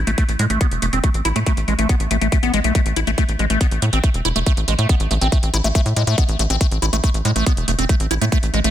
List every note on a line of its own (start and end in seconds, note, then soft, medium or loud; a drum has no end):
0.07 0.15 A1 medium
0.07 0.11 A3 loud
0.07 closed hi-hat soft
0.18 0.24 A3 loud
0.18 kick loud
0.18 closed hi-hat medium
0.29 0.36 A1 medium
0.29 closed hi-hat soft
0.39 0.47 A2 loud
0.39 0.46 G#3 medium
0.39 closed hi-hat medium
0.50 0.58 A1 medium
0.50 0.59 A3 medium
0.50 closed hi-hat soft
0.61 0.67 B3 medium
0.61 kick loud
0.61 closed hi-hat medium
0.71 0.79 E1 medium
0.71 closed hi-hat soft
0.82 0.90 E1 loud
0.82 0.86 A3 medium
0.82 closed hi-hat medium
0.93 1.00 E1 medium
0.93 0.99 C4 medium
0.93 closed hi-hat soft
1.04 1.10 A3 medium
1.04 kick loud
1.04 closed hi-hat medium
1.14 1.22 A1 medium
1.14 closed hi-hat soft
1.25 1.33 A1 loud
1.25 1.29 E4 loud
1.25 closed hi-hat medium
1.36 1.43 A2 medium
1.36 1.39 A3 loud
1.36 closed hi-hat soft
1.46 1.53 A3 loud
1.46 kick loud
1.46 closed hi-hat medium
1.57 1.65 A1 medium
1.57 closed hi-hat soft
1.68 1.75 A1 loud
1.68 1.74 G#3 medium
1.68 closed hi-hat soft
1.79 1.86 A1 medium
1.79 1.88 A3 medium
1.79 closed hi-hat soft
1.89 1.96 B3 medium
1.89 kick loud
1.89 closed hi-hat medium
2.00 2.08 A1 medium
2.00 closed hi-hat soft
2.11 2.18 A1 loud
2.11 2.17 A3 medium
2.11 closed hi-hat medium
2.21 2.29 A1 medium
2.21 2.28 A3 medium
2.21 closed hi-hat soft
2.32 2.38 A3 medium
2.32 kick loud
2.32 closed hi-hat medium
2.43 2.50 A1 medium
2.43 2.52 B3 loud
2.43 closed hi-hat soft
2.54 2.61 A1 loud
2.54 2.60 G#3 loud
2.54 closed hi-hat medium
2.64 2.72 B1 medium
2.64 2.74 A3 medium
2.64 closed hi-hat soft
2.75 2.81 A3 medium
2.75 kick loud
2.75 closed hi-hat medium
2.86 2.93 A1 medium
2.86 closed hi-hat soft
2.96 3.04 A1 loud
2.96 3.00 E4 loud
2.96 closed hi-hat medium
3.07 3.15 A1 medium
3.07 3.11 A3 medium
3.07 closed hi-hat soft
3.18 3.24 A3 loud
3.18 kick loud
3.18 closed hi-hat medium
3.29 3.36 A1 medium
3.29 closed hi-hat soft
3.39 3.47 A1 loud
3.39 3.46 G#3 medium
3.39 closed hi-hat soft
3.50 3.58 A1 medium
3.50 3.59 A3 medium
3.50 closed hi-hat soft
3.61 3.67 B3 medium
3.61 kick loud
3.61 closed hi-hat medium
3.71 3.79 A1 medium
3.71 closed hi-hat soft
3.82 3.90 A2 loud
3.82 3.86 A3 medium
3.82 closed hi-hat medium
3.93 4.00 A1 medium
3.93 3.99 C4 medium
3.93 closed hi-hat soft
4.04 4.10 A3 medium
4.04 kick loud
4.04 closed hi-hat medium
4.14 4.22 E1 medium
4.14 closed hi-hat soft
4.25 4.33 E1 loud
4.25 4.29 E4 loud
4.25 closed hi-hat medium
4.36 4.43 E1 medium
4.36 4.39 A3 medium
4.36 closed hi-hat soft
4.46 4.53 A3 loud
4.46 kick loud
4.46 closed hi-hat medium
4.57 4.65 A1 medium
4.57 closed hi-hat soft
4.68 4.75 A1 medium
4.68 4.74 G#3 medium
4.68 closed hi-hat medium
4.79 4.86 A2 medium
4.79 4.88 A3 medium
4.79 closed hi-hat soft
4.89 4.96 B3 medium
4.89 kick loud
4.89 closed hi-hat medium
5.00 5.08 A1 medium
5.00 closed hi-hat soft
5.11 5.18 A1 loud
5.11 5.15 A3 medium
5.11 closed hi-hat soft
5.21 5.29 A1 medium
5.21 5.28 C4 medium
5.21 closed hi-hat soft
5.32 5.38 A3 medium
5.32 kick loud
5.32 closed hi-hat medium
5.43 5.50 A1 medium
5.43 closed hi-hat soft
5.54 5.61 A1 loud
5.54 5.57 E4 loud
5.54 closed hi-hat medium
5.64 5.72 A1 medium
5.64 5.68 A3 loud
5.64 closed hi-hat soft
5.75 5.81 A3 loud
5.75 kick loud
5.75 closed hi-hat medium
5.86 5.93 A2 medium
5.86 closed hi-hat soft
5.96 6.04 A2 loud
5.96 6.03 G#3 medium
5.96 closed hi-hat medium
6.07 6.15 A2 medium
6.07 6.16 A3 medium
6.07 closed hi-hat soft
6.18 6.24 B3 medium
6.18 kick loud
6.18 closed hi-hat medium
6.29 6.36 A1 medium
6.29 closed hi-hat soft
6.39 6.47 A1 medium
6.39 6.43 A3 medium
6.39 closed hi-hat medium
6.50 6.58 A1 medium
6.50 6.56 C4 medium
6.50 closed hi-hat soft
6.61 6.67 A3 medium
6.61 kick loud
6.61 closed hi-hat medium
6.71 6.79 A1 medium
6.71 closed hi-hat soft
6.82 6.90 A1 loud
6.82 6.86 E4 loud
6.82 closed hi-hat soft
6.93 7.00 A1 medium
6.93 6.97 A3 loud
6.93 closed hi-hat soft
7.04 7.10 A3 loud
7.04 kick loud
7.04 closed hi-hat medium
7.14 7.22 A1 medium
7.14 closed hi-hat soft
7.25 7.33 A2 loud
7.25 7.31 G#3 medium
7.25 closed hi-hat medium
7.36 7.43 A1 medium
7.36 7.45 A3 medium
7.36 closed hi-hat soft
7.46 7.53 B3 medium
7.46 kick loud
7.46 closed hi-hat medium
7.57 7.65 E1 medium
7.57 closed hi-hat soft
7.68 7.75 E1 loud
7.68 7.72 A3 medium
7.68 closed hi-hat medium
7.79 7.86 E1 loud
7.79 7.85 C4 medium
7.79 closed hi-hat soft
7.89 7.96 A3 medium
7.89 kick loud
7.89 closed hi-hat loud
8.00 8.08 A1 medium
8.00 closed hi-hat soft
8.11 8.18 A1 medium
8.11 8.14 E4 medium
8.11 closed hi-hat medium
8.21 8.29 A2 medium
8.21 8.25 A3 loud
8.21 closed hi-hat soft
8.32 8.38 A3 loud
8.32 kick loud
8.32 closed hi-hat medium
8.43 8.50 A1 medium
8.43 closed hi-hat soft
8.54 8.61 A1 loud
8.54 8.60 G#3 medium
8.54 closed hi-hat soft
8.64 8.71 A1 medium
8.64 8.71 A3 medium
8.64 closed hi-hat soft